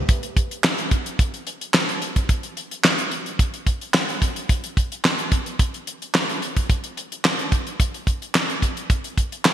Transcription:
0.09 kick, closed hi-hat
0.23 closed hi-hat
0.37 kick, closed hi-hat
0.51 closed hi-hat
0.64 snare, clap
0.78 closed hi-hat
0.91 kick, closed hi-hat
1.06 closed hi-hat
1.19 kick, closed hi-hat
1.34 closed hi-hat
1.47 closed hi-hat
1.61 closed hi-hat
1.74 snare, clap
1.89 closed hi-hat
2.02 closed hi-hat
2.16 kick, closed hi-hat
2.29 kick, closed hi-hat
2.43 closed hi-hat
2.57 closed hi-hat
2.71 closed hi-hat
2.84 snare, clap
2.98 closed hi-hat
3.11 closed hi-hat
3.26 closed hi-hat
3.39 kick, closed hi-hat
3.54 closed hi-hat
3.67 kick, closed hi-hat
3.81 closed hi-hat
3.94 snare, clap
4.09 closed hi-hat
4.22 kick, closed hi-hat
4.36 closed hi-hat
4.49 kick, closed hi-hat
4.64 closed hi-hat
4.77 kick, closed hi-hat
4.92 closed hi-hat
5.05 snare, clap
5.19 closed hi-hat
5.32 kick, closed hi-hat
5.46 closed hi-hat
5.59 kick, closed hi-hat
5.74 closed hi-hat
5.87 closed hi-hat
6.02 closed hi-hat
6.14 snare, clap
6.29 closed hi-hat
6.42 closed hi-hat
6.56 kick, closed hi-hat
6.70 kick, closed hi-hat
6.84 closed hi-hat
6.97 closed hi-hat
7.12 closed hi-hat
7.25 snare, clap
7.39 closed hi-hat
7.52 kick, closed hi-hat
7.67 closed hi-hat
7.80 kick, closed hi-hat
7.94 closed hi-hat
8.07 kick, closed hi-hat
8.22 closed hi-hat
8.35 snare, clap
8.50 closed hi-hat
8.62 kick, closed hi-hat
8.77 closed hi-hat
8.90 kick, closed hi-hat
9.04 closed hi-hat
9.17 kick, closed hi-hat
9.32 closed hi-hat
9.45 snare, clap

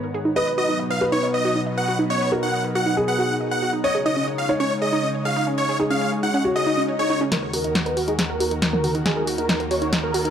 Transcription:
Already playing: G#2 D#3 B3 C#5 A#5
0.03 A#4
0.14 G#4
0.25 D#4
0.36 B2 F#3 B3 D#4 B4 D#5
0.47 B4
0.58 F#4 D#5
0.69 D#4
0.80 D#5
0.90 B4 F5
1.01 F#4 B4
1.12 D#4 C#5
1.23 D#5
1.34 B4 D#5
1.45 F#4
1.56 D#4
1.66 D#5
1.77 B4 F#5
1.88 F#4
1.99 D#4
2.10 C#5 D#5
2.21 B4
2.32 F#4 A#4
2.43 D#4 F#5
2.53 D#5
2.64 B4
2.75 F#4 F#5
2.86 D#4
2.97 G#4 D#5
3.08 B4 F#5
3.19 F#4
3.30 D#4
3.40 D#5
3.51 B4 F#5
3.62 F#4
3.73 D#4
3.84 C#3 G#3 C#5 D#5
3.95 G#4
4.06 D#4 D#5
4.17 C#4
4.27 C#5
4.38 G#4 F5
4.49 D#4 C#5
4.60 C#4 C#5
4.71 C#5
4.82 G#4 D#5
4.93 D#4
5.04 C#4
5.14 C#5
5.25 G#4 F5
5.36 D#4
5.47 C#4
5.58 C#5
5.69 G#4
5.80 D#4 G#4
5.90 C#4 F5
6.01 C#5
6.12 G#4
6.23 D#4 F#5
6.34 C#4
6.45 F#4 C#5, swell
6.56 G#4 D#5
6.67 D#4
6.77 C#4
6.88 C#5
6.99 G#4 C#5
7.10 D#4
7.21 C#4
7.32 D#2 D#3 F#4 A#4 D#5, snare, closed hi-hat, riser
7.43 A#4
7.53 F#4 A#4, open hi-hat
7.64 D#4, closed hi-hat
7.75 D#5, snare, closed hi-hat
7.86 A#4 B4, closed hi-hat
7.97 F#4, open hi-hat
8.08 D#4 G#4, closed hi-hat
8.19 D#5, snare, closed hi-hat
8.30 A#4
8.40 F#4, open hi-hat
8.51 D#4, closed hi-hat
8.62 D#5, snare, closed hi-hat
8.73 A#4, mid tom
8.84 F#4, open hi-hat
8.95 D#4, closed hi-hat
9.06 G#4 D#5, snare, closed hi-hat
9.16 A#4
9.27 F#4, open hi-hat
9.38 D#4 A#4, closed hi-hat
9.49 D#5, snare, closed hi-hat
9.60 A#4, closed hi-hat
9.71 F#4 C#5, open hi-hat
9.82 D#4, closed hi-hat
9.93 D#5, snare, closed hi-hat
10.03 A#4
10.14 F#4, open hi-hat
10.25 D#4, closed hi-hat

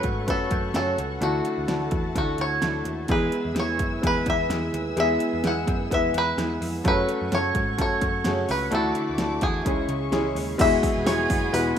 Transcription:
Already playing: A3 C#4 F#4 A4 B4 C#5 F#5 C#6
0.03 G#2 F#3 A3 C#4 F#4, kick, closed hi-hat
0.27 F#2 F#3 A3 C#4 F#4 A4 B4, kick, closed hi-hat
0.50 F#2 F#3 A3 C#4 F#4, kick, closed hi-hat
0.73 F#2 C#3 F#3 A3 C#4 F#4 A4 G#5, snare, closed hi-hat
0.97 C#2 F#3 A3 C#4 F#4, closed hi-hat
1.20 D2 D3 E3 A3 D4 E4 F#4 A4 E5 A5, closed hi-hat
1.43 A3 D4 F#4, closed hi-hat
1.58 D2
1.67 D2 D3 E3 A3 D4 E4 F#4, snare, closed hi-hat
1.90 E2 A3 D4 F#4, kick, closed hi-hat
2.14 D2 E3 A3 D4 E4 F#4, kick, closed hi-hat
2.38 D2 A3 D4 F#4 C#5, closed hi-hat
2.61 D2 D3 E3 A3 D4 E4 F#4, snare, closed hi-hat
2.85 D#2 A3 D4 F#4, closed hi-hat
3.08 E2 E3 G#3 B3 E4 G#4 B4 G#5 E6, kick, closed hi-hat
3.32 B3 E4 G#4, closed hi-hat
3.45 E2
3.54 E2 E3 G#3 B3 E4 G#4, snare, closed hi-hat
3.59 C#5
3.78 F#2 B3 E4 G#4, kick, closed hi-hat
4.02 E2 E3 G#3 B3 E4 G#4, kick, closed hi-hat
4.07 B4
4.25 E2 B3 E4 G#4, kick, closed hi-hat
4.30 E5
4.49 E2 E3 G#3 B3 E4 G#4, snare, closed hi-hat
4.72 D#2 B3 E4 G#4, closed hi-hat
4.96 E2 E3 G#3 B3 E4 G#4, closed hi-hat
5.00 E5
5.18 B3 E4 G#4, closed hi-hat
5.33 E2
5.43 E2 E3 G#3 B3 E4 G#4, snare, closed hi-hat
5.47 F#5
5.66 F#2 B3 E4 G#4, kick, closed hi-hat
5.90 E2 E3 G#3 B3 E4 G#4 B4, kick, closed hi-hat
5.94 E5
6.13 E2 B3 E4 G#4, closed hi-hat
6.18 B4
6.37 E2 E3 G#3 B3 E4 G#4, snare, closed hi-hat
6.60 F2 B3 E4 G#4, open hi-hat
6.84 F#2 C#3 F#3 A3 C#4 F#4 A4 B4 C#5 F#5 C#6, kick, closed hi-hat
7.07 F#3 A3 C#4 A4, closed hi-hat
7.22 F#2
7.31 F#2 C#3 F#3 A3 C#4 F#4 A4 C#5, snare, closed hi-hat
7.54 G#2 F#3 A3 C#4 A4, kick, closed hi-hat
7.77 F#2 F#3 A3 C#4 F#4 A4, kick, closed hi-hat
7.81 C#5
8.01 F#2 F#3 A3 C#4 A4, kick, closed hi-hat
8.24 F#2 C#3 F#3 A3 C#4 F#4 G#4 A4, snare, closed hi-hat
8.48 C#2 F#3 A3 C#4 A4 B4, open hi-hat
8.71 D2 D3 E3 A3 D4 E4 F#4 A4 E5 D6, closed hi-hat
8.95 A3 E4 F#4, closed hi-hat
9.10 D2
9.18 D2 D3 E3 A3 D4 E4 F#4, snare, closed hi-hat
9.41 E2 A3 E4 F#4 G#4, kick, closed hi-hat
9.65 C#2 C#3 E3 G#3 C#4 E4 G#4 C#5 C#6, kick, closed hi-hat
9.88 C#2 C#4 E4 G#4, closed hi-hat
10.11 C#2 C#3 E3 G#3 C#4 E4 G#4, snare, closed hi-hat
10.35 D#2 C#4 E4 G#4, open hi-hat
10.58 E1 E3 G#3 B3 E4 F#4 G#4 E5 F#5 G#5 B5, kick, open hi-hat, crash
10.82 B3 F#4 G#4, kick, open hi-hat
10.96 E1
11.06 E1 E3 G#3 B3 E4 F#4 G#4 C#5, snare, open hi-hat
11.29 F#1 B3 F#4 G#4, kick, open hi-hat
11.52 E1 E3 G#3 B3 E4 F#4 G#4 B4, open hi-hat

